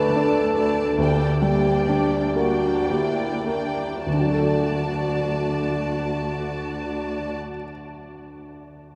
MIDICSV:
0, 0, Header, 1, 6, 480
1, 0, Start_track
1, 0, Key_signature, 2, "major"
1, 0, Tempo, 824176
1, 567, Time_signature, 3, 2, 24, 8
1, 567, Tempo, 890208
1, 1047, Tempo, 1020408
1, 1527, Tempo, 1162791
1, 3447, Tempo, 1113173
1, 4057, End_track
2, 0, Start_track
2, 0, Title_t, "Violin section"
2, 0, Program_c, 0, 48
2, 0, Note_on_c, 0, 74, 36
2, 0, Note_on_c, 0, 81, 38
2, 310, Note_off_c, 0, 74, 0
2, 312, Note_off_c, 0, 81, 0
2, 321, Note_on_c, 0, 81, 34
2, 322, Note_on_c, 0, 74, 35
2, 562, Note_off_c, 0, 74, 0
2, 562, Note_off_c, 0, 81, 0
2, 571, Note_on_c, 0, 74, 33
2, 575, Note_on_c, 0, 79, 33
2, 798, Note_off_c, 0, 74, 0
2, 799, Note_off_c, 0, 79, 0
2, 806, Note_on_c, 0, 79, 30
2, 807, Note_on_c, 0, 74, 36
2, 1273, Note_off_c, 0, 74, 0
2, 1273, Note_off_c, 0, 79, 0
2, 1285, Note_on_c, 0, 74, 32
2, 1287, Note_on_c, 0, 79, 33
2, 1759, Note_off_c, 0, 74, 0
2, 1760, Note_off_c, 0, 79, 0
2, 1772, Note_on_c, 0, 79, 26
2, 1774, Note_on_c, 0, 74, 28
2, 2010, Note_off_c, 0, 79, 0
2, 2011, Note_off_c, 0, 74, 0
2, 2016, Note_on_c, 0, 74, 31
2, 2018, Note_on_c, 0, 81, 30
2, 3375, Note_off_c, 0, 74, 0
2, 3377, Note_off_c, 0, 81, 0
2, 4057, End_track
3, 0, Start_track
3, 0, Title_t, "French horn section"
3, 0, Program_c, 1, 60
3, 0, Note_on_c, 1, 71, 63
3, 85, Note_off_c, 1, 71, 0
3, 96, Note_on_c, 1, 69, 49
3, 473, Note_off_c, 1, 69, 0
3, 572, Note_on_c, 1, 67, 58
3, 1268, Note_off_c, 1, 67, 0
3, 1282, Note_on_c, 1, 66, 45
3, 1523, Note_on_c, 1, 64, 36
3, 1528, Note_off_c, 1, 66, 0
3, 1764, Note_off_c, 1, 64, 0
3, 2019, Note_on_c, 1, 62, 37
3, 3378, Note_off_c, 1, 62, 0
3, 4057, End_track
4, 0, Start_track
4, 0, Title_t, "Grand piano"
4, 0, Program_c, 2, 0
4, 0, Control_c, 2, 64, 127
4, 0, Note_on_c, 2, 38, 47
4, 0, Note_on_c, 2, 57, 35
4, 0, Note_on_c, 2, 62, 37
4, 0, Note_on_c, 2, 69, 38
4, 92, Note_off_c, 2, 62, 0
4, 92, Note_on_c, 2, 62, 39
4, 228, Note_off_c, 2, 69, 0
4, 330, Note_on_c, 2, 69, 35
4, 473, Note_off_c, 2, 62, 0
4, 549, Note_off_c, 2, 38, 0
4, 570, Note_off_c, 2, 69, 0
4, 570, Note_on_c, 2, 38, 44
4, 578, Control_c, 2, 64, 0
4, 580, Note_off_c, 2, 57, 0
4, 692, Control_c, 2, 64, 127
4, 807, Note_on_c, 2, 55, 33
4, 1058, Note_on_c, 2, 62, 31
4, 1187, Note_off_c, 2, 55, 0
4, 1282, Note_on_c, 2, 70, 30
4, 1431, Note_off_c, 2, 62, 0
4, 1535, Note_on_c, 2, 67, 30
4, 1667, Note_off_c, 2, 70, 0
4, 1767, Note_on_c, 2, 70, 29
4, 1920, Note_off_c, 2, 67, 0
4, 1996, Note_off_c, 2, 38, 0
4, 2012, Note_off_c, 2, 70, 0
4, 2014, Note_on_c, 2, 38, 25
4, 2024, Control_c, 2, 64, 0
4, 2043, Note_on_c, 2, 50, 26
4, 2070, Note_on_c, 2, 54, 25
4, 2098, Note_on_c, 2, 62, 24
4, 2113, Control_c, 2, 64, 127
4, 2127, Note_on_c, 2, 69, 25
4, 2157, Note_on_c, 2, 74, 25
4, 3374, Note_off_c, 2, 38, 0
4, 3402, Note_off_c, 2, 50, 0
4, 3429, Note_off_c, 2, 54, 0
4, 3458, Note_off_c, 2, 62, 0
4, 3488, Note_off_c, 2, 69, 0
4, 3519, Note_off_c, 2, 74, 0
4, 4057, End_track
5, 0, Start_track
5, 0, Title_t, "Viola section"
5, 0, Program_c, 3, 48
5, 0, Note_on_c, 3, 57, 40
5, 0, Note_on_c, 3, 62, 40
5, 314, Note_off_c, 3, 57, 0
5, 314, Note_off_c, 3, 62, 0
5, 322, Note_on_c, 3, 57, 32
5, 322, Note_on_c, 3, 62, 34
5, 562, Note_off_c, 3, 57, 0
5, 562, Note_off_c, 3, 62, 0
5, 569, Note_on_c, 3, 62, 29
5, 570, Note_on_c, 3, 58, 30
5, 797, Note_off_c, 3, 58, 0
5, 797, Note_off_c, 3, 62, 0
5, 802, Note_on_c, 3, 62, 32
5, 803, Note_on_c, 3, 58, 36
5, 1271, Note_off_c, 3, 58, 0
5, 1271, Note_off_c, 3, 62, 0
5, 1280, Note_on_c, 3, 58, 33
5, 1280, Note_on_c, 3, 62, 34
5, 1757, Note_off_c, 3, 58, 0
5, 1757, Note_off_c, 3, 62, 0
5, 1765, Note_on_c, 3, 58, 24
5, 1765, Note_on_c, 3, 62, 25
5, 2006, Note_off_c, 3, 62, 0
5, 2007, Note_off_c, 3, 58, 0
5, 2011, Note_on_c, 3, 66, 23
5, 2012, Note_off_c, 3, 66, 0
5, 2012, Note_on_c, 3, 66, 27
5, 3371, Note_off_c, 3, 66, 0
5, 4057, End_track
6, 0, Start_track
6, 0, Title_t, "Cello section"
6, 0, Program_c, 4, 48
6, 87, Note_on_c, 4, 38, 42
6, 496, Note_off_c, 4, 38, 0
6, 569, Note_on_c, 4, 38, 45
6, 975, Note_off_c, 4, 38, 0
6, 1051, Note_on_c, 4, 38, 41
6, 1459, Note_off_c, 4, 38, 0
6, 1530, Note_on_c, 4, 38, 35
6, 1949, Note_off_c, 4, 38, 0
6, 2015, Note_on_c, 4, 38, 30
6, 3374, Note_off_c, 4, 38, 0
6, 4057, End_track
0, 0, End_of_file